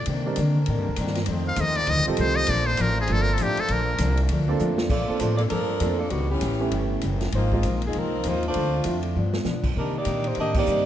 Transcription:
0.06 upright bass C3, steel-string acoustic guitar C3 D#3 A#3, trombone section D3 C4 D4 A#4, ride
0.10 steel-string acoustic guitar D4
0.25 grand piano G3 C4 D4 D#4 A#4
0.36 steel-string acoustic guitar C3 D#3 A#3 D4, upright bass D3, hi-hat pedal, ride
0.66 upright bass A2, steel-string acoustic guitar C3 D#3 A#3, ride
0.71 steel-string acoustic guitar D4
0.78 upright bass G2
0.88 upright bass D#2
0.96 upright bass G2, steel-string acoustic guitar C3 D#3, hi-hat pedal, ride
1.01 steel-string acoustic guitar A#3 D4
1.07 snare
1.15 snare, ride
1.26 upright bass F2, steel-string acoustic guitar F2, trombone section F3 D#4 C5, ride
1.31 steel-string acoustic guitar D#3 A3 C4
1.48 muted trumpet F5
1.56 upright bass D#2, steel-string acoustic guitar F2 D#3 A3, hi-hat pedal, ride
1.60 steel-string acoustic guitar C4, muted trumpet D#5
1.75 muted trumpet D5, ride
1.87 upright bass D2, steel-string acoustic guitar F2 D#3 A3 C4, muted trumpet D#5, ride
1.97 upright bass C2
2.06 upright bass A1, grand piano G3 C4 D#4 F4 A4, muted trumpet G4
2.17 upright bass C2, steel-string acoustic guitar F2 D#3 A3 C4, muted trumpet C5, hi-hat pedal, ride
2.36 muted trumpet D#5
2.47 upright bass A#1, steel-string acoustic guitar A#2 F3, trombone section A#3 D4, muted trumpet D5, ride
2.51 steel-string acoustic guitar A3 D4
2.67 muted trumpet C5
2.77 upright bass A1, steel-string acoustic guitar A#2 F3 A3 D4, hi-hat pedal, ride
2.81 muted trumpet A#4
3.01 muted trumpet G#4
3.07 upright bass G1, steel-string acoustic guitar A#2 F3 A3, grand piano A#3 C4 D4 F4 A4, ride
3.13 steel-string acoustic guitar D4, muted trumpet A4
3.22 muted trumpet A#4
3.34 muted trumpet A4, hi-hat pedal, ride
3.38 upright bass A1, steel-string acoustic guitar A#2 F3 A3 D4
3.43 muted trumpet G4
3.57 muted trumpet A4, muted upright bass stroke, ride
3.68 upright bass A#1, steel-string acoustic guitar A#2 F3 A3, muted trumpet A#4, ride
3.73 steel-string acoustic guitar D4
3.98 upright bass C2, steel-string acoustic guitar A#2 F3 A3 D4, hi-hat pedal, ride
4.17 ride
4.29 upright bass D2, steel-string acoustic guitar A#2 F3 A3 D4, ride
4.48 grand piano A#3 C4 D4 F4 A4
4.59 upright bass F2, steel-string acoustic guitar A#2 F3 A3 D4, hi-hat pedal
4.78 snare
4.90 upright bass A#2, steel-string acoustic guitar A#2 F3 A3 D4, saxophone section A#3 F4 A4 D5, kick, crash
5.08 grand piano A#3 C4 D4 F4 A4, muted upright bass stroke
5.20 upright bass A2, steel-string acoustic guitar A#2 F3 A3 D4, saxophone section A3 D4 F4 C5, hi-hat pedal, ride
5.38 saxophone section A#3 F4 A4 D5, ride
5.48 upright bass G2, steel-string acoustic guitar A#2 F3 A3 D4, saxophone section F3 D4 A4 A#4, ride
5.79 upright bass F2, steel-string acoustic guitar A#2 F3 A3 D4, grand piano A#3 C4 D4 F4 A4, hi-hat pedal, ride
5.99 saxophone section F3 A#3 D4 A4
6.10 upright bass C#2, steel-string acoustic guitar A2 G3 B3 C#4, saxophone section D#3 G3 B3 F#4, ride
6.31 saxophone section E3 B3 C#4 G4
6.40 upright bass A1, steel-string acoustic guitar A2 G3 B3 C#4, hi-hat pedal, ride
6.60 grand piano A3 B3 C#4 E4 G4
6.72 upright bass G1, steel-string acoustic guitar A2 G3 B3 C#4, ride
7.01 upright bass F#1, steel-string acoustic guitar A2 G3 B3 C#4, hi-hat pedal, ride
7.21 snare, ride
7.32 upright bass G#1, steel-string acoustic guitar G#2 F3 A#3 C4, saxophone section A#3 D#4 F4 C5, ride
7.52 grand piano G#3 A#3 C4 D#4 F4, kick
7.63 upright bass A#1, steel-string acoustic guitar G#2 F3 A#3, hi-hat pedal, ride
7.67 steel-string acoustic guitar C4
7.82 ride
7.87 saxophone section F3 C4 D#4 G#4
7.93 upright bass C2, steel-string acoustic guitar G#2 F3 A#3, ride
7.97 saxophone section F3 C4 D#4 A#4, steel-string acoustic guitar C4
8.23 upright bass D#2, steel-string acoustic guitar G#2 F3 A#3 C4, hi-hat pedal, ride
8.29 saxophone section A#3 D#4 F4 C5
8.43 ride
8.48 saxophone section A3 D4 F4 C5
8.54 upright bass D2, steel-string acoustic guitar D3 A3 C4, ride
8.58 steel-string acoustic guitar F4
8.84 upright bass F2, steel-string acoustic guitar D3 A3 C4, grand piano A3 C4 D4 E4 F4, hi-hat pedal, ride
8.88 steel-string acoustic guitar F4
9.03 ride
9.15 steel-string acoustic guitar G2 F3 B3 D4, upright bass G2
9.33 snare
9.44 steel-string acoustic guitar G2 F3 B3 D4, upright bass B2, snare, hi-hat pedal
9.64 kick, crash
9.76 steel-string acoustic guitar C3 D#3 A#3 D4, upright bass C3, saxophone section G3 D4 D#4 A#4
9.98 saxophone section A#3 D#4 G4 D5
10.05 upright bass A#2, steel-string acoustic guitar C3 D#3 A#3 D4, hi-hat pedal, ride
10.24 ride
10.28 saxophone section A#3 D#4 G4 C5
10.35 upright bass A2, steel-string acoustic guitar C3 D#3 A#3, ride
10.40 saxophone section A#3 D4 G4 D#5, steel-string acoustic guitar D4
10.54 grand piano A#3 C4 D#4 G4 D5, kick, crash
10.58 saxophone section A#3 D#4 G4 D5
10.66 upright bass G2, steel-string acoustic guitar C3 D#3 A#3, hi-hat pedal
10.70 steel-string acoustic guitar D4

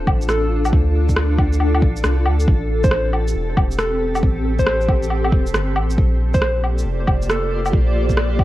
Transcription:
Already playing: ambient pad D4 F4 A4
0.07 sub bass A1, kick, low woodblock
0.21 shaker
0.29 soft synth lead A4, cross-stick, shaker
0.65 low woodblock, shaker
0.73 sub bass D2, kick
1.09 kick, shaker
1.16 cross-stick
1.38 kick, low woodblock
1.53 shaker
1.60 low woodblock
1.75 low woodblock
1.82 sub bass A1, kick
1.96 shaker
2.04 sub bass C2, cross-stick, shaker
2.26 sub bass D2, low woodblock
2.40 shaker
2.48 sub bass A1, ambient pad C4 G4, kick
2.84 soft synth lead C5, kick, shaker
2.91 cross-stick
3.13 low woodblock
3.28 shaker
3.36 sub bass E1
3.57 sub bass E1, kick, low woodblock
3.71 shaker
3.79 soft synth lead A4, cross-stick, shaker
4.15 low woodblock, shaker
4.23 sub bass A1, kick
4.59 soft synth lead C5, kick, shaker
4.67 cross-stick
4.81 shaker
4.89 kick, low woodblock
5.03 shaker
5.10 low woodblock
5.24 low woodblock
5.32 sub bass E1, kick
5.47 shaker
5.54 sub bass G1, cross-stick, shaker
5.76 sub bass A1, low woodblock
5.90 shaker
5.98 sub bass A#1, ambient pad A#3 F4 G4 C5 D5, kick
6.34 soft synth lead C5, kick, shaker
6.42 cross-stick
6.64 low woodblock
6.78 shaker
6.85 sub bass F1
7.07 sub bass F1, kick, low woodblock
7.22 shaker
7.29 soft synth lead A4, cross-stick, shaker
7.66 low woodblock, shaker
7.73 sub bass A#1, kick
8.10 kick, shaker
8.17 cross-stick
8.39 kick, low woodblock

